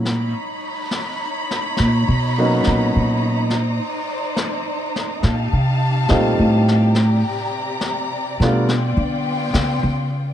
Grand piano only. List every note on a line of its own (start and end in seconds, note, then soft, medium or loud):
2.38 2.62 F#3 soft
2.38 2.63 A#3 soft
2.38 2.63 B3 soft
2.38 2.63 C#4 medium
2.38 2.63 D#4 soft
6.08 6.95 G3 soft
6.08 6.96 A3 soft
6.08 6.95 C4 soft
6.08 6.95 D#4 soft
6.08 6.96 F4 medium
8.41 8.65 G3 soft
8.41 8.66 A3 soft
8.41 8.66 B3 soft
8.41 8.66 D4 soft
8.41 8.66 F4 medium